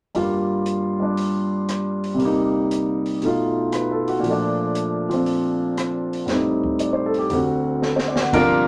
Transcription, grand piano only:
0, 0, Header, 1, 2, 480
1, 0, Start_track
1, 0, Key_signature, -2, "minor"
1, 0, Tempo, 510204
1, 149, Time_signature, 4, 2, 24, 8
1, 8161, End_track
2, 0, Start_track
2, 0, Title_t, "Grand piano"
2, 0, Program_c, 0, 0
2, 137, Note_on_c, 0, 43, 42
2, 144, Note_on_c, 0, 55, 41
2, 148, Note_on_c, 0, 58, 42
2, 152, Note_on_c, 0, 65, 53
2, 922, Note_off_c, 0, 55, 0
2, 936, Note_on_c, 0, 55, 42
2, 961, Note_on_c, 0, 62, 46
2, 2016, Note_on_c, 0, 48, 50
2, 2037, Note_off_c, 0, 55, 0
2, 2051, Note_on_c, 0, 55, 43
2, 2064, Note_off_c, 0, 43, 0
2, 2068, Note_off_c, 0, 58, 0
2, 2071, Note_off_c, 0, 65, 0
2, 2075, Note_off_c, 0, 62, 0
2, 2082, Note_on_c, 0, 58, 43
2, 2117, Note_on_c, 0, 63, 54
2, 3003, Note_off_c, 0, 48, 0
2, 3021, Note_off_c, 0, 55, 0
2, 3025, Note_on_c, 0, 47, 44
2, 3036, Note_off_c, 0, 58, 0
2, 3041, Note_off_c, 0, 63, 0
2, 3044, Note_on_c, 0, 57, 43
2, 3056, Note_on_c, 0, 63, 41
2, 3072, Note_on_c, 0, 65, 49
2, 3518, Note_on_c, 0, 71, 41
2, 3681, Note_on_c, 0, 69, 46
2, 3822, Note_off_c, 0, 71, 0
2, 3837, Note_on_c, 0, 66, 48
2, 3928, Note_off_c, 0, 69, 0
2, 3945, Note_on_c, 0, 46, 50
2, 3979, Note_on_c, 0, 53, 46
2, 3988, Note_off_c, 0, 47, 0
2, 3998, Note_off_c, 0, 57, 0
2, 4003, Note_off_c, 0, 63, 0
2, 4011, Note_off_c, 0, 65, 0
2, 4016, Note_on_c, 0, 57, 46
2, 4048, Note_on_c, 0, 62, 56
2, 4086, Note_off_c, 0, 66, 0
2, 4777, Note_off_c, 0, 53, 0
2, 4791, Note_on_c, 0, 53, 45
2, 4824, Note_on_c, 0, 60, 47
2, 5889, Note_off_c, 0, 46, 0
2, 5890, Note_on_c, 0, 45, 43
2, 5910, Note_off_c, 0, 60, 0
2, 5911, Note_off_c, 0, 53, 0
2, 5911, Note_on_c, 0, 55, 39
2, 5924, Note_off_c, 0, 57, 0
2, 5924, Note_on_c, 0, 60, 40
2, 5940, Note_off_c, 0, 62, 0
2, 5942, Note_on_c, 0, 63, 45
2, 6398, Note_on_c, 0, 74, 37
2, 6519, Note_on_c, 0, 72, 43
2, 6626, Note_off_c, 0, 74, 0
2, 6642, Note_on_c, 0, 69, 47
2, 6725, Note_off_c, 0, 72, 0
2, 6759, Note_on_c, 0, 67, 51
2, 6783, Note_off_c, 0, 69, 0
2, 6861, Note_off_c, 0, 45, 0
2, 6863, Note_on_c, 0, 38, 43
2, 6871, Note_off_c, 0, 55, 0
2, 6877, Note_on_c, 0, 50, 40
2, 6878, Note_off_c, 0, 60, 0
2, 6887, Note_off_c, 0, 63, 0
2, 6895, Note_on_c, 0, 60, 42
2, 6914, Note_on_c, 0, 66, 48
2, 6923, Note_off_c, 0, 67, 0
2, 7360, Note_on_c, 0, 69, 41
2, 7490, Note_on_c, 0, 72, 42
2, 7587, Note_off_c, 0, 69, 0
2, 7598, Note_on_c, 0, 74, 46
2, 7691, Note_off_c, 0, 72, 0
2, 7733, Note_on_c, 0, 78, 43
2, 7741, Note_off_c, 0, 74, 0
2, 7827, Note_off_c, 0, 38, 0
2, 7834, Note_off_c, 0, 50, 0
2, 7842, Note_on_c, 0, 48, 50
2, 7843, Note_off_c, 0, 60, 0
2, 7843, Note_on_c, 0, 70, 96
2, 7846, Note_on_c, 0, 53, 47
2, 7853, Note_off_c, 0, 66, 0
2, 7853, Note_on_c, 0, 58, 49
2, 7853, Note_on_c, 0, 62, 58
2, 7860, Note_on_c, 0, 65, 69
2, 7891, Note_off_c, 0, 78, 0
2, 8161, Note_off_c, 0, 48, 0
2, 8161, Note_off_c, 0, 53, 0
2, 8161, Note_off_c, 0, 58, 0
2, 8161, Note_off_c, 0, 62, 0
2, 8161, Note_off_c, 0, 65, 0
2, 8161, Note_off_c, 0, 70, 0
2, 8161, End_track
0, 0, End_of_file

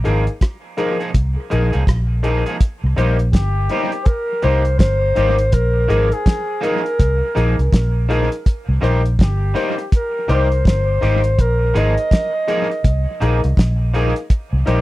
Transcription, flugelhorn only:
0, 0, Header, 1, 2, 480
1, 0, Start_track
1, 0, Key_signature, -3, "minor"
1, 0, Tempo, 730816
1, 1716, Time_signature, 4, 2, 24, 8
1, 9729, End_track
2, 0, Start_track
2, 0, Title_t, "Flugelhorn"
2, 0, Program_c, 0, 56
2, 2193, Note_on_c, 0, 67, 97
2, 2647, Note_on_c, 0, 72, 75
2, 2657, Note_off_c, 0, 67, 0
2, 2667, Note_on_c, 0, 70, 100
2, 2677, Note_off_c, 0, 72, 0
2, 2914, Note_on_c, 0, 72, 112
2, 2924, Note_off_c, 0, 70, 0
2, 3146, Note_off_c, 0, 72, 0
2, 3150, Note_on_c, 0, 72, 122
2, 3634, Note_on_c, 0, 70, 112
2, 3644, Note_off_c, 0, 72, 0
2, 4027, Note_on_c, 0, 68, 102
2, 4037, Note_off_c, 0, 70, 0
2, 4355, Note_on_c, 0, 70, 102
2, 4365, Note_off_c, 0, 68, 0
2, 5315, Note_off_c, 0, 70, 0
2, 6056, Note_on_c, 0, 67, 88
2, 6499, Note_off_c, 0, 67, 0
2, 6539, Note_on_c, 0, 70, 100
2, 6769, Note_on_c, 0, 72, 107
2, 6779, Note_off_c, 0, 70, 0
2, 7002, Note_off_c, 0, 72, 0
2, 7008, Note_on_c, 0, 72, 119
2, 7491, Note_on_c, 0, 70, 108
2, 7501, Note_off_c, 0, 72, 0
2, 7740, Note_on_c, 0, 75, 123
2, 7750, Note_off_c, 0, 70, 0
2, 8687, Note_off_c, 0, 75, 0
2, 9729, End_track
0, 0, End_of_file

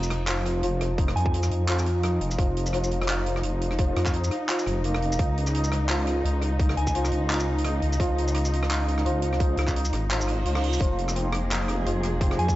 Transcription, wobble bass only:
0, 0, Header, 1, 2, 480
1, 0, Start_track
1, 0, Key_signature, -4, "minor"
1, 0, Tempo, 350877
1, 1343, Time_signature, 4, 2, 24, 8
1, 17177, End_track
2, 0, Start_track
2, 0, Title_t, "Wobble bass"
2, 0, Program_c, 0, 39
2, 0, Note_on_c, 0, 29, 99
2, 847, Note_off_c, 0, 29, 0
2, 859, Note_on_c, 0, 29, 105
2, 1565, Note_off_c, 0, 29, 0
2, 1582, Note_on_c, 0, 41, 102
2, 2046, Note_off_c, 0, 41, 0
2, 2061, Note_on_c, 0, 41, 98
2, 3006, Note_off_c, 0, 41, 0
2, 3022, Note_on_c, 0, 29, 91
2, 3246, Note_off_c, 0, 29, 0
2, 3263, Note_on_c, 0, 29, 102
2, 4687, Note_off_c, 0, 29, 0
2, 4702, Note_on_c, 0, 29, 97
2, 5406, Note_off_c, 0, 29, 0
2, 5420, Note_on_c, 0, 41, 97
2, 5885, Note_off_c, 0, 41, 0
2, 6383, Note_on_c, 0, 29, 97
2, 7087, Note_off_c, 0, 29, 0
2, 7103, Note_on_c, 0, 37, 96
2, 8527, Note_off_c, 0, 37, 0
2, 8541, Note_on_c, 0, 37, 98
2, 9246, Note_off_c, 0, 37, 0
2, 9262, Note_on_c, 0, 37, 99
2, 9726, Note_off_c, 0, 37, 0
2, 9740, Note_on_c, 0, 37, 99
2, 10685, Note_off_c, 0, 37, 0
2, 10703, Note_on_c, 0, 37, 99
2, 10927, Note_off_c, 0, 37, 0
2, 10942, Note_on_c, 0, 37, 99
2, 12366, Note_off_c, 0, 37, 0
2, 12382, Note_on_c, 0, 37, 103
2, 13086, Note_off_c, 0, 37, 0
2, 13099, Note_on_c, 0, 37, 102
2, 13565, Note_off_c, 0, 37, 0
2, 13583, Note_on_c, 0, 32, 94
2, 14287, Note_off_c, 0, 32, 0
2, 14302, Note_on_c, 0, 37, 101
2, 14766, Note_off_c, 0, 37, 0
2, 14782, Note_on_c, 0, 29, 96
2, 16206, Note_off_c, 0, 29, 0
2, 16221, Note_on_c, 0, 29, 97
2, 16926, Note_off_c, 0, 29, 0
2, 16944, Note_on_c, 0, 41, 98
2, 17177, Note_off_c, 0, 41, 0
2, 17177, End_track
0, 0, End_of_file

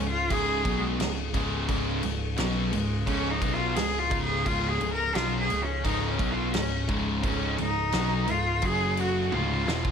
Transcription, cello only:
0, 0, Header, 1, 2, 480
1, 0, Start_track
1, 0, Tempo, 694444
1, 1165, Time_signature, 4, 2, 24, 8
1, 6853, End_track
2, 0, Start_track
2, 0, Title_t, "Cello"
2, 0, Program_c, 0, 42
2, 61, Note_on_c, 0, 65, 114
2, 214, Note_on_c, 0, 68, 127
2, 224, Note_off_c, 0, 65, 0
2, 540, Note_on_c, 0, 56, 92
2, 550, Note_off_c, 0, 68, 0
2, 772, Note_off_c, 0, 56, 0
2, 1882, Note_on_c, 0, 56, 93
2, 2128, Note_on_c, 0, 61, 108
2, 2139, Note_off_c, 0, 56, 0
2, 2283, Note_on_c, 0, 63, 91
2, 2293, Note_off_c, 0, 61, 0
2, 2438, Note_on_c, 0, 65, 96
2, 2449, Note_off_c, 0, 63, 0
2, 2592, Note_on_c, 0, 68, 105
2, 2603, Note_off_c, 0, 65, 0
2, 2755, Note_on_c, 0, 65, 111
2, 2765, Note_off_c, 0, 68, 0
2, 2918, Note_off_c, 0, 65, 0
2, 2928, Note_on_c, 0, 68, 107
2, 3078, Note_on_c, 0, 65, 112
2, 3088, Note_off_c, 0, 68, 0
2, 3234, Note_on_c, 0, 68, 114
2, 3245, Note_off_c, 0, 65, 0
2, 3398, Note_off_c, 0, 68, 0
2, 3405, Note_on_c, 0, 70, 127
2, 3562, Note_on_c, 0, 65, 116
2, 3573, Note_off_c, 0, 70, 0
2, 3722, Note_off_c, 0, 65, 0
2, 3730, Note_on_c, 0, 68, 104
2, 3892, Note_on_c, 0, 61, 100
2, 3902, Note_off_c, 0, 68, 0
2, 4041, Note_on_c, 0, 63, 118
2, 4051, Note_off_c, 0, 61, 0
2, 4159, Note_off_c, 0, 63, 0
2, 4159, Note_on_c, 0, 63, 77
2, 4205, Note_on_c, 0, 61, 90
2, 4215, Note_off_c, 0, 63, 0
2, 4365, Note_on_c, 0, 65, 90
2, 4376, Note_off_c, 0, 61, 0
2, 4516, Note_off_c, 0, 65, 0
2, 4521, Note_on_c, 0, 61, 84
2, 4745, Note_off_c, 0, 61, 0
2, 4952, Note_on_c, 0, 60, 75
2, 5029, Note_on_c, 0, 61, 91
2, 5039, Note_off_c, 0, 60, 0
2, 5256, Note_off_c, 0, 61, 0
2, 5261, Note_on_c, 0, 63, 125
2, 5740, Note_on_c, 0, 65, 115
2, 5750, Note_off_c, 0, 63, 0
2, 5979, Note_on_c, 0, 68, 127
2, 5990, Note_off_c, 0, 65, 0
2, 6214, Note_on_c, 0, 66, 105
2, 6224, Note_off_c, 0, 68, 0
2, 6455, Note_on_c, 0, 65, 87
2, 6466, Note_off_c, 0, 66, 0
2, 6853, Note_off_c, 0, 65, 0
2, 6853, End_track
0, 0, End_of_file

